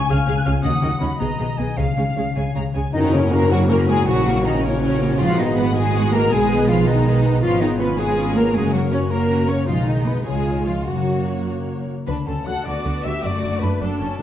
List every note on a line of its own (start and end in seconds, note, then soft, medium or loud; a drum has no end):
0.00 0.66 C#3 medium
0.00 0.66 G#3 soft
0.00 0.53 C#4 medium
0.00 0.44 F4 medium
0.00 0.27 G#4 medium
0.00 0.36 C#5 medium
0.00 0.61 G#5 medium
0.00 0.12 C#6 medium
0.10 0.18 C#2 medium
0.10 0.17 C#3 medium
0.10 0.17 C#4 medium
0.10 0.17 G#4 medium
0.10 0.66 F5 medium
0.10 0.18 F5 medium
0.10 0.37 F6 medium
0.19 1.22 C#6 medium
0.27 0.36 C#2 medium
0.27 0.35 C#3 medium
0.27 0.35 C#4 medium
0.27 0.35 G#4 medium
0.27 0.66 G#4 medium
0.27 0.35 F5 medium
0.37 0.90 C#5 soft
0.37 0.45 F#6 medium
0.45 0.54 C#2 medium
0.45 0.53 C#3 medium
0.45 0.53 C#4 medium
0.45 0.66 F4 medium
0.45 0.53 G#4 soft
0.45 0.53 F5 medium
0.45 0.51 F6 medium
0.55 1.22 C#4 soft
0.63 0.72 D#2 medium
0.63 0.72 D#3 medium
0.63 1.22 D#3 medium
0.63 0.71 C#4 medium
0.63 0.71 F#4 medium
0.63 0.71 D#5 medium
0.63 1.19 F#5 medium
0.63 1.00 D#6 loud
0.73 1.22 F#3 soft
0.82 0.90 D#2 medium
0.82 0.90 D#3 medium
0.82 0.90 C#4 soft
0.82 1.47 D#4 soft
0.82 0.90 F#4 medium
0.82 0.90 D#5 medium
0.91 1.22 C#5 medium
1.01 1.09 D#2 medium
1.01 1.09 D#3 medium
1.01 1.09 C#4 medium
1.01 1.22 F#4 soft
1.01 1.09 F#4 medium
1.01 1.09 D#5 medium
1.01 1.21 B5 medium
1.10 1.79 D#5 medium
1.19 1.28 B1 medium
1.19 1.79 B2 medium
1.19 1.28 B2 medium
1.19 1.28 B3 medium
1.19 1.28 G#4 soft
1.19 1.77 D#5 medium
1.19 1.28 D#5 soft
1.19 1.59 A#5 medium
1.29 1.79 B3 soft
1.38 1.47 B1 medium
1.38 1.47 B2 medium
1.38 1.86 G#3 soft
1.38 1.47 B3 soft
1.38 1.47 G#4 soft
1.38 1.47 D#5 soft
1.49 1.66 D#4 soft
1.58 1.66 B1 medium
1.58 1.66 B2 medium
1.58 1.66 B3 soft
1.58 2.06 G#4 soft
1.58 1.66 G#4 soft
1.58 1.66 D#5 soft
1.58 1.79 G#5 medium
1.68 1.79 D#4 soft
1.77 1.85 C#2 medium
1.77 1.85 C#3 medium
1.77 2.95 C#3 soft
1.77 1.86 G#3 medium
1.77 1.86 G#4 soft
1.77 1.85 C#5 soft
1.77 2.66 F5 medium
1.77 2.32 F5 medium
1.87 2.83 G#3 soft
1.97 2.05 C#2 medium
1.97 2.05 C#3 medium
1.97 2.05 G#3 soft
1.97 2.15 C#4 soft
1.97 2.05 G#4 soft
1.97 2.05 C#5 soft
2.07 2.54 G#4 soft
2.17 2.24 C#2 soft
2.17 2.24 C#3 soft
2.17 2.25 G#3 soft
2.17 2.63 C#4 soft
2.17 2.25 G#4 soft
2.17 2.24 C#5 soft
2.27 2.44 C#5 soft
2.36 2.43 C#2 soft
2.36 2.43 C#3 medium
2.36 2.44 G#3 soft
2.36 2.44 G#4 soft
2.36 2.44 C#5 soft
2.36 2.95 G#5 soft
2.36 2.54 G#5 medium
2.46 3.50 C#5 soft
2.55 2.63 C#2 soft
2.55 2.63 C#3 soft
2.55 2.64 G#3 soft
2.55 2.73 G#4 soft
2.55 2.63 G#4 soft
2.55 2.63 C#5 soft
2.55 2.63 A#5 medium
2.64 3.21 C#4 soft
2.74 2.82 C#2 medium
2.74 2.82 C#3 soft
2.74 2.83 G#3 soft
2.74 2.95 G#4 soft
2.74 2.83 G#4 soft
2.74 2.82 C#5 soft
2.74 2.93 G#5 soft
2.84 2.95 G#3 soft
2.93 4.09 F#2 medium
2.93 4.03 F#2 medium
2.93 3.12 D#3 medium
2.93 5.16 A#3 medium
2.93 3.12 C#4 medium
2.93 3.15 D#4 medium
2.93 3.12 D#4 medium
2.93 5.16 F#4 medium
2.93 3.12 F#4 medium
2.93 3.12 A#4 medium
2.93 2.99 D#5 loud
2.93 tam-tam medium
3.03 4.09 C#3 medium
3.13 3.32 C#3 medium
3.13 4.25 A#3 medium
3.13 3.32 A#3 medium
3.13 3.32 C#4 medium
3.13 3.32 A#4 medium
3.13 3.32 C#5 medium
3.22 3.97 C#4 medium
3.32 3.50 A#3 medium
3.32 3.51 C#4 medium
3.32 3.88 F#4 medium
3.32 3.51 F#4 medium
3.32 3.51 A#4 medium
3.32 3.52 A#4 medium
3.32 3.51 A#4 medium
3.32 3.50 A#5 medium
3.42 3.78 A#4 medium
3.50 3.69 F#3 medium
3.50 3.70 A#3 medium
3.50 3.71 F#4 medium
3.50 3.59 F#4 medium
3.50 3.70 A#4 medium
3.50 3.69 C#5 medium
3.50 3.70 C#5 medium
3.50 3.57 F#5 medium
3.61 4.72 F#5 medium
3.70 3.88 A#3 medium
3.70 3.87 C#4 medium
3.70 3.88 F#4 medium
3.70 3.87 A#4 medium
3.70 3.77 A#4 medium
3.70 3.87 A#4 medium
3.70 4.62 C#5 medium
3.70 3.76 A#5 medium
3.80 4.53 A#4 medium
3.88 4.07 G#3 medium
3.88 4.08 A#3 medium
3.88 4.44 F#4 medium
3.88 4.07 G#4 medium
3.88 4.07 G#4 loud
3.88 4.08 A#4 medium
3.88 4.08 C#5 medium
3.88 4.08 G#5 medium
3.98 4.34 C#4 medium
4.06 5.20 A#1 medium
4.06 5.22 A#2 medium
4.06 4.44 F#3 medium
4.06 4.25 C#4 medium
4.06 4.44 F#4 medium
4.06 4.25 F#4 medium
4.06 4.25 A#4 medium
4.06 4.44 F#5 medium
4.17 6.33 F#3 medium
4.26 5.22 A#3 soft
4.26 4.45 A#3 medium
4.26 4.45 A#4 medium
4.26 4.45 C#5 medium
4.36 5.10 C#4 medium
4.44 4.64 D#3 medium
4.44 4.64 C#4 medium
4.44 4.62 D#4 medium
4.44 4.63 D#4 medium
4.44 5.00 F#4 soft
4.44 4.64 F#4 medium
4.44 4.64 A#4 medium
4.44 4.65 D#5 medium
4.54 4.91 A#4 medium
4.63 5.19 C#3 medium
4.63 4.83 A#3 medium
4.63 5.18 C#4 medium
4.63 5.20 C#4 medium
4.63 4.83 A#4 medium
4.63 4.82 C#5 medium
4.63 5.20 C#5 medium
4.73 5.84 F#5 medium
4.83 5.00 C#4 medium
4.83 5.00 F#4 soft
4.83 5.00 A#4 medium
4.83 5.22 C#5 medium
4.92 5.22 A#4 medium
5.01 5.20 A#3 medium
5.01 5.56 F#4 medium
5.01 5.20 A#4 soft
5.01 5.20 C#5 medium
5.11 5.22 C#4 medium
5.19 6.32 G#1 medium
5.19 6.33 G#2 medium
5.19 5.39 F3 medium
5.19 5.37 G#3 medium
5.19 7.38 B3 medium
5.19 5.38 F4 medium
5.19 5.37 F#4 medium
5.19 6.29 F#4 medium
5.19 5.41 F5 medium
5.19 5.37 F#5 medium
5.30 6.33 D#3 medium
5.38 5.57 D#3 medium
5.38 5.57 B3 medium
5.38 6.49 B3 soft
5.38 5.55 D#4 medium
5.38 5.57 D#4 medium
5.38 5.57 G#4 medium
5.38 5.57 D#5 medium
5.38 5.59 D#5 medium
5.48 6.21 D#4 medium
5.56 5.76 G#3 medium
5.56 5.75 B3 medium
5.56 5.76 F#4 medium
5.56 6.12 F#4 medium
5.56 5.75 B4 medium
5.56 5.76 F#5 medium
5.56 5.76 B5 medium
5.74 6.12 G#3 medium
5.74 5.94 B3 medium
5.74 6.12 G#4 medium
5.74 5.94 G#4 medium
5.74 6.12 G#4 medium
5.74 5.94 D#5 medium
5.74 6.13 G#5 medium
5.85 6.33 F#5 medium
5.94 6.11 G#3 medium
5.94 6.11 F#4 medium
5.94 6.86 D#5 medium
5.94 6.12 F#5 medium
6.04 6.76 B4 medium
6.12 6.32 A#3 medium
6.12 6.31 B3 medium
6.12 6.33 F#4 medium
6.12 6.30 G#4 medium
6.12 6.33 A#4 medium
6.12 6.31 A#4 loud
6.12 6.32 D#5 medium
6.12 6.34 A#5 medium
6.22 6.58 D#4 medium
6.31 7.40 B1 medium
6.31 7.44 B2 medium
6.31 6.48 G#3 medium
6.31 6.68 G#3 medium
6.31 6.67 G#4 medium
6.31 6.49 G#4 medium
6.31 6.68 G#4 medium
6.31 7.43 G#4 medium
6.31 6.49 B4 medium
6.31 6.71 G#5 medium
6.49 6.68 B3 medium
6.49 7.59 B3 soft
6.49 6.68 B4 medium
6.49 6.68 D#5 medium
6.59 7.32 D#4 medium
6.68 6.86 F3 medium
6.68 6.86 G#3 medium
6.68 6.76 F4 medium
6.68 6.87 F4 medium
6.68 6.86 G#4 medium
6.68 7.23 G#4 medium
6.68 6.87 B4 medium
6.68 6.89 F5 medium
6.77 7.14 B4 medium
6.86 7.42 D#3 medium
6.86 7.05 B3 medium
6.86 7.42 D#4 medium
6.86 7.43 D#4 medium
6.86 7.05 B4 medium
6.86 7.04 D#5 medium
6.86 7.05 D#5 medium
6.86 7.20 D#5 medium
6.96 8.56 G#5 medium
7.05 7.23 G#3 medium
7.05 7.23 G#4 medium
7.05 7.23 B4 medium
7.05 7.44 D#5 medium
7.15 7.88 B4 medium
7.23 7.42 B3 medium
7.23 8.56 G#4 soft
7.23 7.42 B4 soft
7.23 7.43 D#5 medium
7.33 7.44 D#4 soft
7.42 8.55 G#1 medium
7.42 8.56 G#2 medium
7.42 7.61 F3 medium
7.42 7.95 B3 medium
7.42 7.60 C#4 medium
7.42 7.59 F4 medium
7.42 7.60 F4 medium
7.42 7.51 F4 medium
7.42 7.95 F4 medium
7.42 7.60 B4 medium
7.42 7.62 F5 medium
7.51 8.56 G#3 medium
7.60 7.80 D#3 medium
7.60 7.79 B3 medium
7.60 8.56 B3 soft
7.60 7.79 D#4 medium
7.60 7.69 D#4 medium
7.60 7.79 G#4 medium
7.60 7.79 C#5 medium
7.60 7.79 D#5 medium
7.70 8.44 C#4 soft
7.79 7.87 B3 medium
7.79 7.98 C#4 medium
7.79 8.34 F4 soft
7.79 7.98 F4 medium
7.79 7.98 B4 medium
7.79 7.88 B4 medium
7.79 7.98 B4 medium
7.79 8.00 B5 medium
7.89 8.25 B4 medium
7.98 8.35 G#3 medium
7.98 8.53 B3 medium
7.98 8.17 B3 medium
7.98 8.53 F4 medium
7.98 8.17 G#4 medium
7.98 8.35 G#4 medium
7.98 8.36 G#4 medium
7.98 8.17 C#5 medium
7.98 8.16 C#5 medium
7.98 8.36 G#5 medium
8.08 8.56 F5 soft
8.17 8.34 C#4 soft
8.17 8.35 F4 soft
8.17 8.34 B4 soft
8.17 9.09 C#5 soft
8.27 8.56 B4 soft
8.36 8.55 A#3 medium
8.36 8.55 B3 soft
8.36 8.56 F4 soft
8.36 8.55 G#4 soft
8.36 8.55 A#4 medium
8.36 8.45 A#4 medium
8.36 8.54 C#5 soft
8.36 8.56 A#5 medium
8.54 9.68 F#1 medium
8.54 9.70 F#2 medium
8.54 8.73 G#3 medium
8.54 9.10 A#3 soft
8.54 8.72 C#4 medium
8.54 9.10 F#4 soft
8.54 8.72 F#4 soft
8.54 8.74 G#4 medium
8.54 8.73 G#4 medium
8.54 8.72 A#4 soft
8.54 8.74 G#5 medium
8.64 9.70 C#3 soft
8.73 8.92 F#3 medium
8.73 9.70 A#3 soft
8.73 8.92 A#3 soft
8.73 8.81 F#4 medium
8.73 8.82 F#4 medium
8.73 8.92 A#4 soft
8.73 8.92 C#5 soft
8.73 8.91 F#5 medium
8.83 9.57 C#4 soft
8.92 9.11 C#4 soft
8.92 9.00 C#4 medium
8.92 9.47 F#4 soft
8.92 9.11 F#4 soft
8.92 9.11 A#4 soft
8.92 8.99 C#5 medium
8.92 9.01 C#5 medium
8.92 9.12 C#6 medium
9.01 9.38 A#4 soft
9.10 9.30 A#3 soft
9.10 9.67 A#3 soft
9.10 9.48 A#3 medium
9.10 9.67 F#4 medium
9.10 9.30 A#4 soft
9.10 9.48 A#4 medium
9.10 9.50 A#4 medium
9.10 9.28 C#5 soft
9.10 9.30 C#5 soft
9.10 9.50 A#5 medium
9.20 9.69 F#5 soft
9.29 9.47 C#4 soft
9.29 9.47 F#4 soft
9.29 9.47 A#4 soft
9.29 9.69 C#5 soft
9.39 9.70 A#4 soft
9.48 9.68 A#3 soft
9.48 9.68 C#4 medium
9.48 9.70 F#4 soft
9.48 9.68 A#4 soft
9.48 9.67 C#5 medium
9.48 9.68 C#5 soft
9.48 9.68 C#5 medium
9.48 9.67 C#6 medium
9.58 9.70 C#4 soft
9.67 10.23 B1 medium
9.67 10.28 B2 medium
9.67 9.76 F3 medium
9.67 10.22 G#3 soft
9.67 10.10 G#3 soft
9.67 10.22 D#4 soft
9.67 10.10 D#4 soft
9.67 9.89 F4 medium
9.67 9.87 F4 medium
9.67 10.22 D#5 soft
9.67 9.74 F5 medium
9.78 10.28 B3 soft
9.87 10.06 D#3 soft
9.87 10.35 G#3 soft
9.87 10.07 D#4 medium
9.87 10.09 D#4 medium
9.87 9.93 D#5 soft
9.97 10.15 D#4 soft
10.06 10.26 B3 medium
10.06 10.66 G#4 soft
10.06 10.26 B4 medium
10.06 10.29 B4 soft
10.06 10.13 B5 soft
10.16 10.28 D#4 soft
10.25 10.85 C#2 soft
10.25 10.88 C#3 soft
10.25 10.85 G#3 soft
10.25 10.65 G#3 soft
10.25 10.85 G#3 soft
10.25 10.86 F4 soft
10.25 10.65 G#4 medium
10.25 10.67 G#4 medium
10.25 10.85 C#5 soft
10.25 10.66 G#5 soft
10.36 10.88 G#3 soft
10.56 10.88 F4 soft
10.66 10.74 F3 soft
10.66 10.88 F4 soft
10.66 10.86 F4 medium
10.66 10.89 G#4 soft
10.66 10.73 F5 soft
10.77 11.46 C#5 soft
10.86 11.87 F#2 soft
10.86 12.09 F#2 soft
10.86 11.46 F#3 soft
10.86 11.87 A#3 soft
10.86 11.86 A#3 soft
10.86 11.47 F#4 medium
10.86 11.47 F#4 soft
10.86 11.88 F#4 soft
10.86 11.86 F#4 soft
10.86 11.85 C#5 soft
10.86 11.46 F#5 soft
10.97 12.09 C#3 soft
11.07 12.09 A#3 soft
11.17 11.96 C#4 soft
11.27 11.86 F#4 soft
11.37 11.76 A#4 soft
11.48 11.67 C#5 soft
11.58 12.53 F#5 soft
11.68 12.09 C#5 soft
11.78 12.09 A#4 soft
11.87 12.25 F#4 soft
11.97 12.09 C#4 soft
12.06 12.15 D2 soft
12.06 13.25 D3 soft
12.06 12.15 D3 medium
12.06 12.25 D4 medium
12.06 12.15 B4 medium
12.06 12.29 B5 medium
12.16 13.12 D4 soft
12.26 12.35 D2 soft
12.26 12.35 D3 soft
12.26 12.46 C#4 soft
12.26 13.03 F#4 soft
12.26 12.46 A4 soft
12.26 12.48 A5 soft
12.36 12.93 A4 soft
12.46 12.54 D2 soft
12.46 12.54 D3 soft
12.46 12.53 A3 soft
12.46 12.53 F#4 soft
12.46 12.65 A4 medium
12.46 12.83 D5 soft
12.46 12.65 F#5 medium
12.46 12.67 F#6 medium
12.65 12.74 D2 soft
12.65 12.73 D3 soft
12.65 13.19 B3 medium
12.65 13.04 F#4 medium
12.65 13.03 D5 medium
12.65 14.22 A5 soft
12.65 13.06 D6 medium
12.74 13.79 F#5 soft
12.85 12.93 D2 soft
12.85 12.93 D3 soft
12.94 13.60 A4 soft
13.04 13.12 D2 medium
13.04 13.12 D3 soft
13.04 13.12 A3 soft
13.04 13.51 F#4 soft
13.04 13.11 F#4 soft
13.04 13.24 G4 medium
13.04 13.24 E5 medium
13.04 13.24 E6 medium
13.13 13.42 D4 soft
13.22 13.31 F#1 soft
13.22 14.22 F#2 soft
13.22 13.31 F#2 medium
13.22 13.81 A3 soft
13.22 13.62 F#4 medium
13.22 13.62 D5 medium
13.22 13.61 D6 medium
13.33 14.22 A3 soft
13.43 13.51 F#1 soft
13.43 13.51 F#2 medium
13.43 14.17 D4 soft
13.52 14.08 F#4 soft
13.62 13.69 F#1 soft
13.62 13.70 F#2 soft
13.62 13.69 A3 medium
13.62 13.69 D4 medium
13.62 13.80 D4 medium
13.62 13.99 A4 soft
13.62 13.81 B4 medium
13.62 13.68 B5 medium
13.72 13.89 D5 soft
13.80 13.89 F#1 soft
13.80 13.89 F#2 medium
13.80 13.99 D4 medium
13.80 14.22 D4 medium
13.80 14.22 A4 medium
13.80 14.22 F#5 soft
13.80 14.22 A5 medium
14.00 14.08 F#1 medium
14.00 14.08 F#2 medium
14.00 14.19 C#4 soft
14.00 14.22 A4 soft
14.09 14.22 F#4 soft
14.19 14.22 F#1 medium
14.19 14.22 F#2 medium
14.19 14.22 A3 medium
14.19 14.22 D4 soft
14.19 14.22 D4 medium